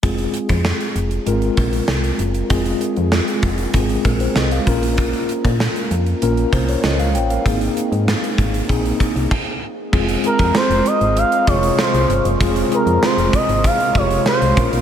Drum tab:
CC |----------------|----------------|----------------|------------x---|
HH |xxxx-xxxxxxx-xxx|xxxx-xxxxxxx-xxx|xxxx-xxxxxxx-xxx|xxxx-xxxxxxx----|
SD |----o-------o---|----o-------o---|----o-------o---|----o-----------|
BD |o--o------o-----|o-----o-o-o---o-|o--o------o-----|o-----o-o-o-o---|

CC |x---------------|----------------|
HH |-xxx-xxxxxxx-xxx|xxxx-xxxxxxx-xxx|
SD |----o-------o---|----o-------o---|
BD |o--o------o-----|o-----o-o-o---o-|